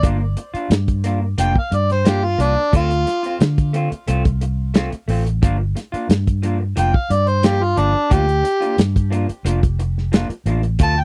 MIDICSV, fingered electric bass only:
0, 0, Header, 1, 3, 480
1, 0, Start_track
1, 0, Tempo, 672646
1, 31, Time_signature, 4, 2, 24, 8
1, 7879, End_track
2, 0, Start_track
2, 0, Title_t, "Fingered electric bass"
2, 0, Program_c, 0, 33
2, 26, Note_on_c, 0, 31, 83
2, 248, Note_off_c, 0, 31, 0
2, 500, Note_on_c, 0, 43, 90
2, 957, Note_off_c, 0, 43, 0
2, 985, Note_on_c, 0, 29, 90
2, 1101, Note_off_c, 0, 29, 0
2, 1225, Note_on_c, 0, 43, 99
2, 1680, Note_off_c, 0, 43, 0
2, 1703, Note_on_c, 0, 36, 70
2, 1820, Note_off_c, 0, 36, 0
2, 1949, Note_on_c, 0, 38, 85
2, 2170, Note_off_c, 0, 38, 0
2, 2432, Note_on_c, 0, 50, 94
2, 2767, Note_off_c, 0, 50, 0
2, 2913, Note_on_c, 0, 36, 93
2, 3487, Note_off_c, 0, 36, 0
2, 3627, Note_on_c, 0, 33, 81
2, 3849, Note_off_c, 0, 33, 0
2, 3873, Note_on_c, 0, 31, 73
2, 4092, Note_off_c, 0, 31, 0
2, 4347, Note_on_c, 0, 43, 76
2, 4800, Note_off_c, 0, 43, 0
2, 4831, Note_on_c, 0, 29, 91
2, 4944, Note_off_c, 0, 29, 0
2, 5069, Note_on_c, 0, 43, 92
2, 5521, Note_off_c, 0, 43, 0
2, 5547, Note_on_c, 0, 31, 78
2, 5662, Note_off_c, 0, 31, 0
2, 5790, Note_on_c, 0, 38, 80
2, 6010, Note_off_c, 0, 38, 0
2, 6269, Note_on_c, 0, 43, 92
2, 6605, Note_off_c, 0, 43, 0
2, 6741, Note_on_c, 0, 29, 104
2, 7321, Note_off_c, 0, 29, 0
2, 7462, Note_on_c, 0, 33, 76
2, 7685, Note_off_c, 0, 33, 0
2, 7705, Note_on_c, 0, 38, 82
2, 7879, Note_off_c, 0, 38, 0
2, 7879, End_track
3, 0, Start_track
3, 0, Title_t, "Muted fingered electric bass strokes"
3, 387, Note_on_c, 9, 29, 33
3, 458, Note_off_c, 9, 29, 0
3, 2796, Note_on_c, 9, 29, 37
3, 2867, Note_off_c, 9, 29, 0
3, 3517, Note_on_c, 9, 29, 33
3, 3588, Note_off_c, 9, 29, 0
3, 4235, Note_on_c, 9, 29, 33
3, 4306, Note_off_c, 9, 29, 0
3, 6632, Note_on_c, 9, 29, 37
3, 6703, Note_off_c, 9, 29, 0
3, 7346, Note_on_c, 9, 29, 31
3, 7417, Note_off_c, 9, 29, 0
3, 7879, End_track
0, 0, End_of_file